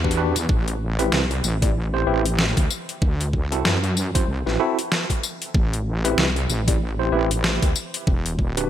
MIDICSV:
0, 0, Header, 1, 4, 480
1, 0, Start_track
1, 0, Tempo, 631579
1, 372, Time_signature, 4, 2, 24, 8
1, 6610, End_track
2, 0, Start_track
2, 0, Title_t, "Tine electric piano"
2, 0, Program_c, 0, 4
2, 32, Note_on_c, 0, 62, 99
2, 32, Note_on_c, 0, 66, 95
2, 32, Note_on_c, 0, 67, 94
2, 32, Note_on_c, 0, 71, 107
2, 117, Note_off_c, 0, 62, 0
2, 117, Note_off_c, 0, 66, 0
2, 117, Note_off_c, 0, 67, 0
2, 117, Note_off_c, 0, 71, 0
2, 131, Note_on_c, 0, 62, 105
2, 131, Note_on_c, 0, 66, 91
2, 131, Note_on_c, 0, 67, 95
2, 132, Note_on_c, 0, 71, 116
2, 262, Note_off_c, 0, 62, 0
2, 262, Note_off_c, 0, 66, 0
2, 262, Note_off_c, 0, 67, 0
2, 262, Note_off_c, 0, 71, 0
2, 751, Note_on_c, 0, 67, 83
2, 752, Note_on_c, 0, 60, 98
2, 752, Note_on_c, 0, 64, 86
2, 752, Note_on_c, 0, 71, 112
2, 920, Note_off_c, 0, 60, 0
2, 920, Note_off_c, 0, 64, 0
2, 920, Note_off_c, 0, 67, 0
2, 920, Note_off_c, 0, 71, 0
2, 1232, Note_on_c, 0, 67, 72
2, 1232, Note_on_c, 0, 74, 91
2, 1233, Note_on_c, 0, 60, 76
2, 1233, Note_on_c, 0, 64, 75
2, 1325, Note_off_c, 0, 60, 0
2, 1325, Note_off_c, 0, 64, 0
2, 1325, Note_off_c, 0, 67, 0
2, 1325, Note_off_c, 0, 74, 0
2, 1472, Note_on_c, 0, 60, 84
2, 1472, Note_on_c, 0, 72, 98
2, 1473, Note_on_c, 0, 64, 77
2, 1473, Note_on_c, 0, 67, 80
2, 1557, Note_off_c, 0, 60, 0
2, 1557, Note_off_c, 0, 67, 0
2, 1557, Note_off_c, 0, 72, 0
2, 1558, Note_off_c, 0, 64, 0
2, 1572, Note_on_c, 0, 60, 99
2, 1572, Note_on_c, 0, 64, 93
2, 1572, Note_on_c, 0, 67, 89
2, 1572, Note_on_c, 0, 71, 110
2, 1702, Note_off_c, 0, 67, 0
2, 1702, Note_off_c, 0, 71, 0
2, 1703, Note_off_c, 0, 60, 0
2, 1703, Note_off_c, 0, 64, 0
2, 2672, Note_on_c, 0, 66, 92
2, 2672, Note_on_c, 0, 69, 109
2, 2673, Note_on_c, 0, 60, 102
2, 2673, Note_on_c, 0, 64, 91
2, 2840, Note_off_c, 0, 60, 0
2, 2840, Note_off_c, 0, 64, 0
2, 2840, Note_off_c, 0, 66, 0
2, 2840, Note_off_c, 0, 69, 0
2, 3153, Note_on_c, 0, 60, 83
2, 3153, Note_on_c, 0, 64, 73
2, 3153, Note_on_c, 0, 66, 75
2, 3153, Note_on_c, 0, 72, 86
2, 3245, Note_off_c, 0, 60, 0
2, 3245, Note_off_c, 0, 64, 0
2, 3245, Note_off_c, 0, 66, 0
2, 3245, Note_off_c, 0, 72, 0
2, 3392, Note_on_c, 0, 60, 87
2, 3392, Note_on_c, 0, 64, 78
2, 3392, Note_on_c, 0, 66, 79
2, 3392, Note_on_c, 0, 71, 96
2, 3477, Note_off_c, 0, 60, 0
2, 3477, Note_off_c, 0, 64, 0
2, 3477, Note_off_c, 0, 66, 0
2, 3477, Note_off_c, 0, 71, 0
2, 3492, Note_on_c, 0, 60, 101
2, 3493, Note_on_c, 0, 64, 87
2, 3493, Note_on_c, 0, 66, 91
2, 3493, Note_on_c, 0, 69, 110
2, 3623, Note_off_c, 0, 60, 0
2, 3623, Note_off_c, 0, 64, 0
2, 3623, Note_off_c, 0, 66, 0
2, 3623, Note_off_c, 0, 69, 0
2, 4594, Note_on_c, 0, 60, 100
2, 4594, Note_on_c, 0, 64, 94
2, 4594, Note_on_c, 0, 67, 85
2, 4594, Note_on_c, 0, 71, 107
2, 4761, Note_off_c, 0, 60, 0
2, 4761, Note_off_c, 0, 64, 0
2, 4761, Note_off_c, 0, 67, 0
2, 4761, Note_off_c, 0, 71, 0
2, 5074, Note_on_c, 0, 60, 80
2, 5074, Note_on_c, 0, 74, 88
2, 5075, Note_on_c, 0, 64, 72
2, 5075, Note_on_c, 0, 67, 72
2, 5166, Note_off_c, 0, 60, 0
2, 5166, Note_off_c, 0, 64, 0
2, 5166, Note_off_c, 0, 67, 0
2, 5166, Note_off_c, 0, 74, 0
2, 5315, Note_on_c, 0, 60, 86
2, 5315, Note_on_c, 0, 64, 83
2, 5315, Note_on_c, 0, 67, 76
2, 5315, Note_on_c, 0, 72, 94
2, 5399, Note_off_c, 0, 60, 0
2, 5399, Note_off_c, 0, 64, 0
2, 5399, Note_off_c, 0, 67, 0
2, 5399, Note_off_c, 0, 72, 0
2, 5412, Note_on_c, 0, 64, 92
2, 5413, Note_on_c, 0, 60, 101
2, 5413, Note_on_c, 0, 67, 92
2, 5414, Note_on_c, 0, 71, 111
2, 5543, Note_off_c, 0, 60, 0
2, 5543, Note_off_c, 0, 64, 0
2, 5543, Note_off_c, 0, 67, 0
2, 5543, Note_off_c, 0, 71, 0
2, 6514, Note_on_c, 0, 62, 94
2, 6514, Note_on_c, 0, 66, 90
2, 6514, Note_on_c, 0, 67, 88
2, 6514, Note_on_c, 0, 71, 107
2, 6610, Note_off_c, 0, 62, 0
2, 6610, Note_off_c, 0, 66, 0
2, 6610, Note_off_c, 0, 67, 0
2, 6610, Note_off_c, 0, 71, 0
2, 6610, End_track
3, 0, Start_track
3, 0, Title_t, "Wobble bass"
3, 0, Program_c, 1, 39
3, 0, Note_on_c, 1, 40, 102
3, 251, Note_off_c, 1, 40, 0
3, 272, Note_on_c, 1, 40, 100
3, 356, Note_off_c, 1, 40, 0
3, 373, Note_on_c, 1, 33, 99
3, 837, Note_off_c, 1, 33, 0
3, 851, Note_on_c, 1, 36, 95
3, 1076, Note_off_c, 1, 36, 0
3, 1093, Note_on_c, 1, 33, 99
3, 1557, Note_off_c, 1, 33, 0
3, 1572, Note_on_c, 1, 33, 100
3, 1930, Note_off_c, 1, 33, 0
3, 1954, Note_on_c, 1, 38, 101
3, 2037, Note_off_c, 1, 38, 0
3, 2294, Note_on_c, 1, 38, 96
3, 2621, Note_off_c, 1, 38, 0
3, 2621, Note_on_c, 1, 37, 96
3, 2758, Note_off_c, 1, 37, 0
3, 2774, Note_on_c, 1, 42, 103
3, 3237, Note_off_c, 1, 42, 0
3, 3253, Note_on_c, 1, 36, 96
3, 3371, Note_off_c, 1, 36, 0
3, 3393, Note_on_c, 1, 33, 100
3, 3477, Note_off_c, 1, 33, 0
3, 4214, Note_on_c, 1, 33, 98
3, 4677, Note_off_c, 1, 33, 0
3, 4693, Note_on_c, 1, 36, 96
3, 4917, Note_off_c, 1, 36, 0
3, 4934, Note_on_c, 1, 33, 100
3, 5397, Note_off_c, 1, 33, 0
3, 5412, Note_on_c, 1, 33, 101
3, 5770, Note_off_c, 1, 33, 0
3, 5795, Note_on_c, 1, 38, 99
3, 5878, Note_off_c, 1, 38, 0
3, 6135, Note_on_c, 1, 28, 93
3, 6598, Note_off_c, 1, 28, 0
3, 6610, End_track
4, 0, Start_track
4, 0, Title_t, "Drums"
4, 34, Note_on_c, 9, 36, 66
4, 83, Note_on_c, 9, 42, 53
4, 110, Note_off_c, 9, 36, 0
4, 159, Note_off_c, 9, 42, 0
4, 273, Note_on_c, 9, 42, 65
4, 273, Note_on_c, 9, 54, 62
4, 349, Note_off_c, 9, 42, 0
4, 349, Note_off_c, 9, 54, 0
4, 373, Note_on_c, 9, 36, 125
4, 449, Note_off_c, 9, 36, 0
4, 515, Note_on_c, 9, 42, 50
4, 591, Note_off_c, 9, 42, 0
4, 754, Note_on_c, 9, 42, 67
4, 830, Note_off_c, 9, 42, 0
4, 853, Note_on_c, 9, 38, 116
4, 929, Note_off_c, 9, 38, 0
4, 994, Note_on_c, 9, 42, 33
4, 1070, Note_off_c, 9, 42, 0
4, 1093, Note_on_c, 9, 54, 63
4, 1169, Note_off_c, 9, 54, 0
4, 1233, Note_on_c, 9, 36, 111
4, 1234, Note_on_c, 9, 42, 64
4, 1309, Note_off_c, 9, 36, 0
4, 1310, Note_off_c, 9, 42, 0
4, 1714, Note_on_c, 9, 42, 63
4, 1790, Note_off_c, 9, 42, 0
4, 1813, Note_on_c, 9, 38, 120
4, 1889, Note_off_c, 9, 38, 0
4, 1954, Note_on_c, 9, 36, 109
4, 1955, Note_on_c, 9, 42, 51
4, 2030, Note_off_c, 9, 36, 0
4, 2031, Note_off_c, 9, 42, 0
4, 2055, Note_on_c, 9, 54, 71
4, 2131, Note_off_c, 9, 54, 0
4, 2196, Note_on_c, 9, 42, 63
4, 2272, Note_off_c, 9, 42, 0
4, 2294, Note_on_c, 9, 36, 123
4, 2370, Note_off_c, 9, 36, 0
4, 2437, Note_on_c, 9, 42, 50
4, 2513, Note_off_c, 9, 42, 0
4, 2534, Note_on_c, 9, 36, 61
4, 2610, Note_off_c, 9, 36, 0
4, 2676, Note_on_c, 9, 42, 62
4, 2752, Note_off_c, 9, 42, 0
4, 2775, Note_on_c, 9, 38, 116
4, 2851, Note_off_c, 9, 38, 0
4, 2916, Note_on_c, 9, 42, 35
4, 2992, Note_off_c, 9, 42, 0
4, 3016, Note_on_c, 9, 54, 64
4, 3092, Note_off_c, 9, 54, 0
4, 3155, Note_on_c, 9, 36, 102
4, 3156, Note_on_c, 9, 37, 37
4, 3156, Note_on_c, 9, 42, 65
4, 3231, Note_off_c, 9, 36, 0
4, 3232, Note_off_c, 9, 37, 0
4, 3232, Note_off_c, 9, 42, 0
4, 3397, Note_on_c, 9, 38, 36
4, 3473, Note_off_c, 9, 38, 0
4, 3497, Note_on_c, 9, 37, 51
4, 3573, Note_off_c, 9, 37, 0
4, 3638, Note_on_c, 9, 42, 66
4, 3714, Note_off_c, 9, 42, 0
4, 3737, Note_on_c, 9, 38, 115
4, 3813, Note_off_c, 9, 38, 0
4, 3875, Note_on_c, 9, 36, 60
4, 3878, Note_on_c, 9, 42, 48
4, 3951, Note_off_c, 9, 36, 0
4, 3954, Note_off_c, 9, 42, 0
4, 3978, Note_on_c, 9, 54, 70
4, 4054, Note_off_c, 9, 54, 0
4, 4117, Note_on_c, 9, 42, 61
4, 4193, Note_off_c, 9, 42, 0
4, 4214, Note_on_c, 9, 36, 118
4, 4290, Note_off_c, 9, 36, 0
4, 4358, Note_on_c, 9, 42, 52
4, 4434, Note_off_c, 9, 42, 0
4, 4597, Note_on_c, 9, 42, 67
4, 4673, Note_off_c, 9, 42, 0
4, 4696, Note_on_c, 9, 38, 116
4, 4772, Note_off_c, 9, 38, 0
4, 4836, Note_on_c, 9, 42, 36
4, 4912, Note_off_c, 9, 42, 0
4, 4936, Note_on_c, 9, 54, 65
4, 5012, Note_off_c, 9, 54, 0
4, 5075, Note_on_c, 9, 36, 103
4, 5076, Note_on_c, 9, 42, 67
4, 5151, Note_off_c, 9, 36, 0
4, 5152, Note_off_c, 9, 42, 0
4, 5555, Note_on_c, 9, 42, 67
4, 5631, Note_off_c, 9, 42, 0
4, 5655, Note_on_c, 9, 38, 111
4, 5731, Note_off_c, 9, 38, 0
4, 5795, Note_on_c, 9, 36, 105
4, 5796, Note_on_c, 9, 42, 52
4, 5871, Note_off_c, 9, 36, 0
4, 5872, Note_off_c, 9, 42, 0
4, 5894, Note_on_c, 9, 54, 70
4, 5970, Note_off_c, 9, 54, 0
4, 6035, Note_on_c, 9, 42, 65
4, 6111, Note_off_c, 9, 42, 0
4, 6134, Note_on_c, 9, 36, 115
4, 6210, Note_off_c, 9, 36, 0
4, 6275, Note_on_c, 9, 42, 54
4, 6351, Note_off_c, 9, 42, 0
4, 6374, Note_on_c, 9, 36, 61
4, 6450, Note_off_c, 9, 36, 0
4, 6515, Note_on_c, 9, 42, 70
4, 6591, Note_off_c, 9, 42, 0
4, 6610, End_track
0, 0, End_of_file